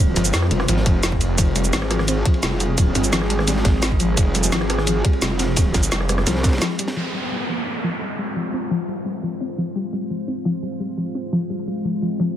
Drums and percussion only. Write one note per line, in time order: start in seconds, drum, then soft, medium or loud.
0.16 closed hi-hat medium
0.16 ride medium
0.16 shaker soft
0.25 shaker medium
0.33 snare loud
0.33 closed hi-hat medium
0.33 ride medium
0.33 shaker medium
0.42 cross-stick soft
0.42 snare soft
0.51 closed hi-hat medium
0.51 ride medium
0.59 cross-stick soft
0.59 snare soft
0.68 closed hi-hat medium
0.68 ride medium
0.68 shaker soft
0.77 snare soft
0.86 kick loud
0.86 closed hi-hat medium
0.86 ride medium
1.03 snare loud
1.03 closed hi-hat medium
1.03 ride medium
1.03 shaker soft
1.12 kick medium
1.12 ride soft
1.21 closed hi-hat medium
1.21 ride medium
1.21 shaker soft
1.38 kick loud
1.38 closed hi-hat medium
1.38 ride medium
1.38 shaker medium
1.56 closed hi-hat medium
1.56 ride medium
1.56 shaker soft
1.64 shaker medium
1.73 snare loud
1.73 closed hi-hat medium
1.73 ride medium
1.73 shaker medium
1.82 cross-stick soft
1.82 ride soft
1.91 cross-stick medium
1.91 closed hi-hat medium
1.91 ride medium
1.99 cross-stick soft
1.99 snare soft
2.08 closed hi-hat medium
2.08 ride medium
2.08 shaker medium
2.25 kick loud
2.25 closed hi-hat medium
2.25 ride medium
2.34 ride soft
2.43 snare loud
2.43 closed hi-hat medium
2.43 ride medium
2.43 shaker soft
2.60 closed hi-hat medium
2.60 ride medium
2.60 shaker soft
2.78 kick loud
2.78 closed hi-hat loud
2.78 ride medium
2.78 shaker medium
2.95 closed hi-hat medium
2.95 ride medium
2.95 shaker soft
3.04 shaker medium
3.12 snare loud
3.12 closed hi-hat loud
3.12 ride medium
3.12 shaker medium
3.21 cross-stick soft
3.21 snare soft
3.30 closed hi-hat medium
3.30 ride medium
3.39 cross-stick soft
3.39 snare soft
3.47 snare medium
3.47 closed hi-hat medium
3.47 ride medium
3.47 shaker medium
3.57 snare soft
3.65 kick loud
3.65 snare loud
3.65 closed hi-hat medium
3.65 ride medium
3.82 snare loud
3.82 closed hi-hat loud
3.82 ride medium
3.82 shaker medium
3.91 kick medium
3.91 ride soft
4.00 closed hi-hat medium
4.00 ride medium
4.00 shaker soft
4.17 kick loud
4.17 closed hi-hat loud
4.17 ride medium
4.17 shaker medium
4.35 closed hi-hat medium
4.35 ride medium
4.35 shaker soft
4.44 shaker medium
4.52 snare loud
4.52 closed hi-hat loud
4.52 ride loud
4.52 shaker medium
4.61 cross-stick soft
4.61 ride soft
4.70 cross-stick medium
4.70 closed hi-hat medium
4.70 ride medium
4.78 cross-stick soft
4.78 snare soft
4.87 closed hi-hat medium
4.87 ride medium
4.87 shaker medium
5.05 kick loud
5.05 closed hi-hat medium
5.05 ride medium
5.13 ride soft
5.22 snare loud
5.22 closed hi-hat loud
5.22 ride medium
5.22 shaker medium
5.39 snare loud
5.39 closed hi-hat medium
5.39 ride medium
5.39 shaker soft
5.56 kick loud
5.56 snare loud
5.56 closed hi-hat loud
5.56 ride medium
5.56 shaker medium
5.74 kick medium
5.74 snare loud
5.74 closed hi-hat medium
5.74 ride medium
5.74 shaker soft
5.83 shaker medium
5.92 snare loud
5.92 closed hi-hat loud
5.92 ride medium
5.92 shaker medium
6.01 cross-stick soft
6.01 snare soft
6.09 cross-stick medium
6.09 closed hi-hat medium
6.09 ride medium
6.09 shaker soft
6.17 cross-stick medium
6.17 snare soft
6.27 snare loud
6.27 closed hi-hat loud
6.27 ride medium
6.27 shaker medium
6.36 snare soft
6.43 kick loud
6.43 snare loud
6.43 closed hi-hat medium
6.43 ride medium
6.43 shaker soft
6.48 snare medium
6.48 ride medium
6.53 snare medium
6.53 ride medium
6.58 snare medium
6.58 ride medium
6.61 snare loud
6.61 closed hi-hat loud
6.61 shaker medium
6.70 snare soft
6.79 closed hi-hat medium
6.79 ride medium
6.79 shaker soft
6.88 snare loud
6.88 ride medium
6.96 crash medium